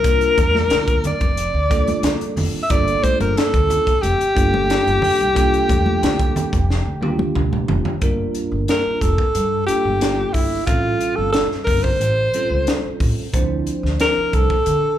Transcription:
Already playing: C2 A#4
0.03 G3 A#3 D4 F4 A#4, kick, closed hi-hat
0.21 closed hi-hat
0.38 E2, kick, closed hi-hat, high conga
0.55 snare, high conga
0.70 D2, snare, closed hi-hat
0.88 kick, closed hi-hat
1.04 D5, muted upright bass stroke, closed hi-hat, low conga
1.21 F1, kick, closed hi-hat
1.37 closed hi-hat
1.54 D2
1.70 G3 A#3 D4 F4 A4, kick, closed hi-hat
1.87 closed hi-hat, high conga
2.03 D2, snare, closed hi-hat
2.21 closed hi-hat
2.36 F1, open hi-hat, low conga
2.53 muted upright bass stroke
2.63 E5
2.70 G1 G3 A#3 D4 F4 A4 D5, kick, closed hi-hat
2.87 closed hi-hat
3.03 C5, muted upright bass stroke, kick, closed hi-hat, high conga
3.20 G1 A#4, closed hi-hat, high conga
3.37 A4, snare, closed hi-hat
3.54 D2, kick, closed hi-hat
3.70 closed hi-hat, low conga
3.87 muted upright bass stroke, kick, closed hi-hat
4.02 F1 G4, closed hi-hat
4.21 muted upright bass stroke, closed hi-hat
4.35 G1 G3 A#3 D4 F4 A4, kick, closed hi-hat
4.54 high conga
4.70 snare, closed hi-hat
4.87 G1, closed hi-hat
5.02 muted upright bass stroke, open hi-hat, low conga
5.21 C2, closed hi-hat
5.34 G3 A#3 D4 F4 A4, kick, closed hi-hat
5.54 closed hi-hat
5.69 E2, kick, closed hi-hat, high conga
5.86 high conga
6.03 D2, snare, closed hi-hat
6.20 kick, closed hi-hat
6.36 muted upright bass stroke, closed hi-hat, low conga
6.52 F1, kick, closed hi-hat
6.70 snare
6.85 D2
7.01 G3 A#3 D4 F4 G4, high tom
7.19 high conga
7.35 D2, mid tom
7.52 muted upright bass stroke, mid tom, high conga
7.68 F1, floor tom, low conga
7.85 muted upright bass stroke, floor tom
8.01 G1 G3 A#3 D4 F4 A#4, kick, closed hi-hat
8.35 closed hi-hat
8.52 G1
8.68 A#4, snare, closed hi-hat
8.86 muted upright bass stroke
9.01 F1 A4, kick, closed hi-hat
9.18 kick
9.35 G2, closed hi-hat
9.67 G3 A#3 D4 F4 G4 A4, muted upright bass stroke, closed hi-hat
9.85 G1
10.01 snare, closed hi-hat
10.33 G1 E4, kick, open hi-hat
10.66 A1 G3 C4 C#4 F4 A4, kick, closed hi-hat
11.01 closed hi-hat
11.16 G1 A4
11.32 A4, snare, closed hi-hat
11.51 muted upright bass stroke, snare
11.64 G1 A#4, kick, open hi-hat
11.83 C5, kick
12.00 A1, closed hi-hat
12.34 G3 C4 C#4 F4 A4, closed hi-hat
12.50 C#2
12.67 snare, closed hi-hat
12.84 muted upright bass stroke
13.00 A2, kick, open hi-hat
13.33 D2 F3 C4 D4 E4 C5, kick, closed hi-hat
13.67 closed hi-hat
13.83 D2, snare
14.00 A#4, snare, closed hi-hat
14.17 muted upright bass stroke
14.33 C2 A4, kick, closed hi-hat
14.50 kick
14.66 D3, closed hi-hat

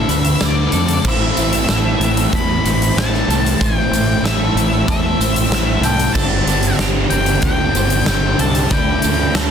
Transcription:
Already playing: D3 A3 D4 F4 A4 E5
0.08 D2 B4, closed hi-hat, tambourine
0.25 closed hi-hat
0.41 D2 D3 A3, snare, closed hi-hat, tambourine
0.45 D4 D5
0.72 F2 A4, closed hi-hat, tambourine
0.89 closed hi-hat
1.04 A1 A2 E3 A3 C4 E4 A4 C5, kick, tambourine, crash
1.09 E5
1.37 A1 A2 E3 A3 C4 E4, closed hi-hat, tambourine
1.53 closed hi-hat
1.69 A1 A2 E3 A3 C4 E4 A4, snare, closed hi-hat, tambourine
2.00 A1 A2 E3, closed hi-hat, tambourine
2.04 A3 C4 E4
2.17 closed hi-hat
2.33 E2 A2 E3 A3 C4 E4 A4 B5, kick, closed hi-hat
2.65 A1 A2 E3 A3 C4 E4 C5, closed hi-hat, tambourine
2.82 closed hi-hat
2.97 A1 A2 E3 A3 C4 E4 A5, snare, closed hi-hat, tambourine
3.14 snare
3.28 C2 A2 E3 A3 C4 E4 A4, closed hi-hat, tambourine
3.46 closed hi-hat
3.61 A1 A2 E3 A3 C4 E4 C5 G5, kick, closed hi-hat, tambourine
3.91 A1 A2 E3 A3 C4 E4, closed hi-hat, tambourine
4.22 A1 A2 E3 A3 C4 E4 A4 E5, snare, closed hi-hat, tambourine
4.55 A1 A2 E3 A3 C4, closed hi-hat, tambourine
4.59 E4
4.88 E2 A2 E3 A3 C4 E4 A4 E5, kick, closed hi-hat
5.19 A1 A2 E3 A3 C4 E4 C5, closed hi-hat, tambourine
5.36 closed hi-hat
5.50 A1 A2 E3 A3 C4, snare, closed hi-hat, tambourine
5.54 E4
5.81 C2 A2 E3 A4 G5, closed hi-hat
5.85 A3 C4 E4, tambourine
6.00 closed hi-hat
6.14 G1 G2 D3 G3 C4 D4 G4 A4 A5, kick, tambourine, crash
6.46 G1 G2 D3 G3 C4 D4, closed hi-hat, tambourine
6.63 closed hi-hat
6.78 G1 G2 D3 G3 C4 D4 G4, snare, closed hi-hat, tambourine
7.10 G1 G2 D3 G3 C4 D4 G5, closed hi-hat, tambourine
7.26 closed hi-hat
7.42 D2 G2 D3 G3 C4 D4 G4 G5, kick, closed hi-hat
7.75 G1 G2 D3 G3 C4 D4 C5, closed hi-hat, tambourine
7.90 closed hi-hat
8.06 G1 G2 D3 G3 C4 D4, snare, closed hi-hat, tambourine
8.39 C2 G2 D3 G3 C4 D4 A4 A5, closed hi-hat, tambourine
8.55 closed hi-hat
8.70 D2 D3 F3 A3 D4 F4 B4 G5, kick, closed hi-hat, tambourine
9.02 D2 D3 F3 A3 D4, closed hi-hat, tambourine
9.34 D2 D3 F3 A3 D4 A4, snare, closed hi-hat, tambourine

